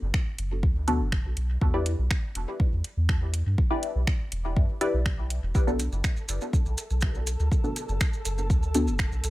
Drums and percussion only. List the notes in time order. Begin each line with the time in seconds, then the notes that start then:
0.14 finger snap, kick
0.38 closed hi-hat
0.63 kick
0.88 closed hi-hat
1.12 finger snap, kick
1.37 closed hi-hat
1.61 kick
1.86 closed hi-hat
2.11 finger snap, kick
2.35 closed hi-hat
2.60 kick
2.84 closed hi-hat
3.09 finger snap, kick
3.34 closed hi-hat
3.58 kick
3.83 closed hi-hat
4.07 finger snap, kick
4.32 closed hi-hat
4.56 kick
4.81 closed hi-hat
5.06 finger snap, kick
5.30 closed hi-hat
5.55 kick, maracas
5.68 maracas
5.79 closed hi-hat, maracas
5.92 maracas
6.04 finger snap, kick, maracas
6.17 maracas
6.29 closed hi-hat, maracas
6.41 maracas
6.53 kick, maracas
6.66 maracas
6.78 closed hi-hat, maracas
6.90 maracas
7.01 finger snap, kick, maracas
7.15 maracas
7.27 closed hi-hat, maracas
7.40 maracas
7.52 kick, maracas
7.64 maracas
7.76 closed hi-hat, maracas
7.89 maracas
8.01 finger snap, kick, maracas
8.13 maracas
8.25 closed hi-hat, maracas
8.38 maracas
8.50 kick, maracas
8.63 maracas
8.74 closed hi-hat, maracas
8.87 maracas
8.99 finger snap, kick, maracas
9.12 maracas
9.24 closed hi-hat, maracas